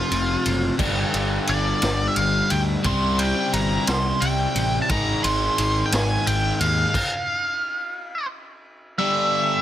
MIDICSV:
0, 0, Header, 1, 6, 480
1, 0, Start_track
1, 0, Tempo, 682594
1, 560, Time_signature, 6, 3, 24, 8
1, 6763, End_track
2, 0, Start_track
2, 0, Title_t, "Lead electric guitar"
2, 0, Program_c, 0, 29
2, 0, Note_on_c, 0, 65, 77
2, 523, Note_off_c, 0, 65, 0
2, 1052, Note_on_c, 0, 74, 91
2, 1449, Note_off_c, 0, 74, 0
2, 1459, Note_on_c, 0, 76, 72
2, 1515, Note_off_c, 0, 76, 0
2, 1521, Note_on_c, 0, 77, 79
2, 1764, Note_off_c, 0, 77, 0
2, 1767, Note_on_c, 0, 79, 98
2, 1831, Note_off_c, 0, 79, 0
2, 2011, Note_on_c, 0, 84, 100
2, 2230, Note_off_c, 0, 84, 0
2, 2246, Note_on_c, 0, 79, 107
2, 2484, Note_on_c, 0, 82, 96
2, 2491, Note_off_c, 0, 79, 0
2, 2728, Note_off_c, 0, 82, 0
2, 2730, Note_on_c, 0, 84, 105
2, 2962, Note_on_c, 0, 79, 89
2, 2974, Note_off_c, 0, 84, 0
2, 3365, Note_off_c, 0, 79, 0
2, 3389, Note_on_c, 0, 81, 81
2, 3441, Note_off_c, 0, 81, 0
2, 3451, Note_on_c, 0, 82, 91
2, 3682, Note_off_c, 0, 82, 0
2, 3684, Note_on_c, 0, 84, 105
2, 4119, Note_on_c, 0, 79, 76
2, 4127, Note_off_c, 0, 84, 0
2, 4165, Note_off_c, 0, 79, 0
2, 4179, Note_on_c, 0, 80, 90
2, 4410, Note_off_c, 0, 80, 0
2, 4413, Note_on_c, 0, 79, 80
2, 4631, Note_off_c, 0, 79, 0
2, 4648, Note_on_c, 0, 77, 82
2, 5816, Note_off_c, 0, 77, 0
2, 6319, Note_on_c, 0, 76, 104
2, 6763, Note_off_c, 0, 76, 0
2, 6763, End_track
3, 0, Start_track
3, 0, Title_t, "Clean electric guitar"
3, 0, Program_c, 1, 27
3, 0, Note_on_c, 1, 41, 79
3, 0, Note_on_c, 1, 53, 68
3, 0, Note_on_c, 1, 57, 74
3, 69, Note_on_c, 1, 60, 74
3, 305, Note_off_c, 1, 57, 0
3, 314, Note_off_c, 1, 41, 0
3, 314, Note_on_c, 1, 57, 66
3, 555, Note_off_c, 1, 60, 0
3, 556, Note_off_c, 1, 53, 0
3, 557, Note_off_c, 1, 57, 0
3, 6763, End_track
4, 0, Start_track
4, 0, Title_t, "Overdriven electric guitar"
4, 0, Program_c, 2, 29
4, 0, Note_on_c, 2, 41, 82
4, 0, Note_on_c, 2, 48, 86
4, 0, Note_on_c, 2, 53, 101
4, 541, Note_off_c, 2, 41, 0
4, 545, Note_off_c, 2, 48, 0
4, 549, Note_on_c, 2, 43, 93
4, 551, Note_off_c, 2, 53, 0
4, 557, Note_on_c, 2, 50, 83
4, 566, Note_on_c, 2, 55, 93
4, 1982, Note_off_c, 2, 43, 0
4, 1986, Note_off_c, 2, 50, 0
4, 1990, Note_off_c, 2, 55, 0
4, 1992, Note_on_c, 2, 48, 92
4, 2000, Note_on_c, 2, 55, 101
4, 2009, Note_on_c, 2, 60, 90
4, 3423, Note_off_c, 2, 48, 0
4, 3428, Note_off_c, 2, 55, 0
4, 3440, Note_on_c, 2, 44, 92
4, 3445, Note_on_c, 2, 51, 97
4, 3451, Note_on_c, 2, 56, 97
4, 4470, Note_off_c, 2, 60, 0
4, 4866, Note_off_c, 2, 44, 0
4, 4869, Note_off_c, 2, 51, 0
4, 4872, Note_off_c, 2, 56, 0
4, 6319, Note_on_c, 2, 43, 91
4, 6330, Note_on_c, 2, 50, 93
4, 6336, Note_on_c, 2, 55, 94
4, 6763, Note_off_c, 2, 43, 0
4, 6763, Note_off_c, 2, 50, 0
4, 6763, Note_off_c, 2, 55, 0
4, 6763, End_track
5, 0, Start_track
5, 0, Title_t, "Picked electric bass"
5, 0, Program_c, 3, 34
5, 80, Note_on_c, 3, 29, 95
5, 247, Note_off_c, 3, 29, 0
5, 324, Note_on_c, 3, 30, 91
5, 491, Note_off_c, 3, 30, 0
5, 556, Note_on_c, 3, 31, 86
5, 725, Note_off_c, 3, 31, 0
5, 803, Note_on_c, 3, 31, 83
5, 970, Note_off_c, 3, 31, 0
5, 1047, Note_on_c, 3, 31, 88
5, 1213, Note_off_c, 3, 31, 0
5, 1285, Note_on_c, 3, 31, 101
5, 1451, Note_off_c, 3, 31, 0
5, 1526, Note_on_c, 3, 31, 93
5, 1692, Note_off_c, 3, 31, 0
5, 1769, Note_on_c, 3, 38, 93
5, 1934, Note_off_c, 3, 38, 0
5, 2002, Note_on_c, 3, 36, 86
5, 2337, Note_off_c, 3, 36, 0
5, 2485, Note_on_c, 3, 31, 94
5, 2652, Note_off_c, 3, 31, 0
5, 2729, Note_on_c, 3, 36, 99
5, 2894, Note_off_c, 3, 36, 0
5, 2966, Note_on_c, 3, 36, 92
5, 3133, Note_off_c, 3, 36, 0
5, 3203, Note_on_c, 3, 33, 84
5, 3371, Note_off_c, 3, 33, 0
5, 3444, Note_on_c, 3, 32, 94
5, 3611, Note_off_c, 3, 32, 0
5, 3687, Note_on_c, 3, 32, 92
5, 3853, Note_off_c, 3, 32, 0
5, 3928, Note_on_c, 3, 32, 90
5, 4094, Note_off_c, 3, 32, 0
5, 4167, Note_on_c, 3, 32, 91
5, 4333, Note_off_c, 3, 32, 0
5, 4409, Note_on_c, 3, 32, 93
5, 4574, Note_off_c, 3, 32, 0
5, 4645, Note_on_c, 3, 39, 89
5, 4812, Note_off_c, 3, 39, 0
5, 6763, End_track
6, 0, Start_track
6, 0, Title_t, "Drums"
6, 81, Note_on_c, 9, 51, 75
6, 151, Note_off_c, 9, 51, 0
6, 320, Note_on_c, 9, 51, 69
6, 391, Note_off_c, 9, 51, 0
6, 555, Note_on_c, 9, 49, 99
6, 556, Note_on_c, 9, 36, 117
6, 626, Note_off_c, 9, 36, 0
6, 626, Note_off_c, 9, 49, 0
6, 800, Note_on_c, 9, 51, 71
6, 870, Note_off_c, 9, 51, 0
6, 1036, Note_on_c, 9, 51, 70
6, 1106, Note_off_c, 9, 51, 0
6, 1278, Note_on_c, 9, 51, 94
6, 1285, Note_on_c, 9, 38, 99
6, 1349, Note_off_c, 9, 51, 0
6, 1356, Note_off_c, 9, 38, 0
6, 1519, Note_on_c, 9, 51, 70
6, 1589, Note_off_c, 9, 51, 0
6, 1759, Note_on_c, 9, 51, 65
6, 1829, Note_off_c, 9, 51, 0
6, 1999, Note_on_c, 9, 51, 92
6, 2000, Note_on_c, 9, 36, 113
6, 2069, Note_off_c, 9, 51, 0
6, 2070, Note_off_c, 9, 36, 0
6, 2242, Note_on_c, 9, 51, 75
6, 2312, Note_off_c, 9, 51, 0
6, 2485, Note_on_c, 9, 51, 76
6, 2556, Note_off_c, 9, 51, 0
6, 2723, Note_on_c, 9, 51, 91
6, 2730, Note_on_c, 9, 38, 102
6, 2793, Note_off_c, 9, 51, 0
6, 2800, Note_off_c, 9, 38, 0
6, 2965, Note_on_c, 9, 51, 75
6, 3036, Note_off_c, 9, 51, 0
6, 3203, Note_on_c, 9, 51, 71
6, 3274, Note_off_c, 9, 51, 0
6, 3442, Note_on_c, 9, 51, 96
6, 3443, Note_on_c, 9, 36, 118
6, 3512, Note_off_c, 9, 51, 0
6, 3513, Note_off_c, 9, 36, 0
6, 3685, Note_on_c, 9, 51, 83
6, 3755, Note_off_c, 9, 51, 0
6, 3925, Note_on_c, 9, 51, 78
6, 3995, Note_off_c, 9, 51, 0
6, 4165, Note_on_c, 9, 51, 103
6, 4172, Note_on_c, 9, 38, 118
6, 4235, Note_off_c, 9, 51, 0
6, 4242, Note_off_c, 9, 38, 0
6, 4410, Note_on_c, 9, 51, 81
6, 4480, Note_off_c, 9, 51, 0
6, 4645, Note_on_c, 9, 51, 74
6, 4715, Note_off_c, 9, 51, 0
6, 4882, Note_on_c, 9, 36, 103
6, 4885, Note_on_c, 9, 49, 97
6, 4953, Note_off_c, 9, 36, 0
6, 4955, Note_off_c, 9, 49, 0
6, 6763, End_track
0, 0, End_of_file